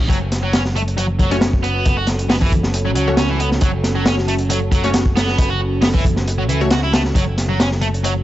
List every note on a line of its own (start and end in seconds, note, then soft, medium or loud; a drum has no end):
0.09 1.83 F#1 medium
0.09 0.17 F#3 medium
0.09 8.23 C#4 medium
0.09 8.23 F#4 medium
0.09 8.23 A4 medium
0.09 kick loud
0.09 closed hi-hat medium
0.32 snare soft
0.32 closed hi-hat medium
0.43 0.53 F#3 medium
0.53 0.62 C#4 medium
0.53 snare loud
0.53 closed hi-hat medium
0.65 snare soft
0.76 0.81 A3 medium
0.76 closed hi-hat medium
0.88 closed hi-hat soft
0.97 1.06 F#3 medium
0.97 closed hi-hat medium
1.19 1.30 F#3 loud
1.19 kick loud
1.19 closed hi-hat medium
1.31 1.39 A3 loud
1.31 1.36 C#4 medium
1.31 1.39 C#4 medium
1.31 1.39 F#4 medium
1.31 1.39 C#5 loud
1.31 closed hi-hat soft
1.41 snare loud
1.41 closed hi-hat medium
1.53 kick medium
1.63 1.96 B3 medium
1.63 closed hi-hat medium
1.86 2.96 F#1 medium
1.86 kick loud
1.86 closed hi-hat medium
1.97 2.07 F#4 medium
2.07 snare medium
2.07 closed hi-hat medium
2.19 closed hi-hat soft
2.29 2.35 B3 medium
2.29 snare loud
2.29 open hi-hat medium
2.41 2.51 E3 loud
2.41 kick medium
2.52 kick medium
2.52 closed hi-hat medium
2.63 snare medium
2.74 closed hi-hat medium
2.85 2.90 F#3 medium
2.96 3.59 C#2 medium
2.96 3.07 F#3 medium
2.96 closed hi-hat medium
3.07 3.15 A3 loud
3.07 3.15 C#4 medium
3.07 3.15 F#4 medium
3.07 3.15 C#5 loud
3.17 3.29 C#4 medium
3.17 snare loud
3.17 closed hi-hat medium
3.29 3.39 E3 medium
3.40 3.48 B3 loud
3.40 closed hi-hat medium
3.52 snare soft
3.61 5.36 F#1 medium
3.61 3.70 F#3 medium
3.61 kick loud
3.61 closed hi-hat medium
3.84 snare soft
3.84 closed hi-hat medium
3.96 4.06 F#3 medium
4.06 4.15 C#4 medium
4.06 snare loud
4.06 closed hi-hat medium
4.18 snare soft
4.28 4.33 A3 loud
4.28 closed hi-hat medium
4.39 closed hi-hat soft
4.50 4.59 F#3 medium
4.50 closed hi-hat medium
4.72 4.83 F#3 medium
4.72 kick loud
4.72 closed hi-hat medium
4.83 4.91 A3 medium
4.83 4.88 C#4 medium
4.83 4.91 C#4 medium
4.83 4.91 F#4 medium
4.83 4.91 C#5 loud
4.83 closed hi-hat soft
4.94 snare loud
4.94 closed hi-hat medium
5.06 kick medium
5.16 5.49 B3 medium
5.16 snare loud
5.16 closed hi-hat medium
5.28 snare soft
5.38 6.49 F#1 medium
5.38 kick loud
5.38 closed hi-hat medium
5.50 5.60 F#4 medium
5.82 5.87 B3 loud
5.82 snare loud
5.82 open hi-hat medium
5.94 6.04 E3 loud
5.94 kick loud
6.05 kick loud
6.05 closed hi-hat medium
6.16 snare soft
6.28 closed hi-hat medium
6.38 6.43 F#3 medium
6.49 7.12 C#2 loud
6.49 6.60 E3 medium
6.49 closed hi-hat medium
6.61 6.68 A3 loud
6.61 6.68 C#4 medium
6.61 6.68 F#4 medium
6.61 6.68 C#5 loud
6.71 6.79 F#4 loud
6.71 snare loud
6.71 closed hi-hat medium
6.83 6.92 E4 medium
6.93 7.01 A3 medium
6.93 snare loud
6.93 closed hi-hat medium
7.05 snare soft
7.15 8.23 F#1 medium
7.15 7.23 F#3 medium
7.15 kick loud
7.15 closed hi-hat medium
7.37 snare soft
7.37 closed hi-hat medium
7.49 7.59 F#3 medium
7.60 7.68 C#4 medium
7.60 snare loud
7.60 closed hi-hat medium
7.72 snare soft
7.81 7.86 A3 loud
7.81 closed hi-hat medium
7.94 closed hi-hat soft
8.04 8.12 F#3 medium
8.04 closed hi-hat medium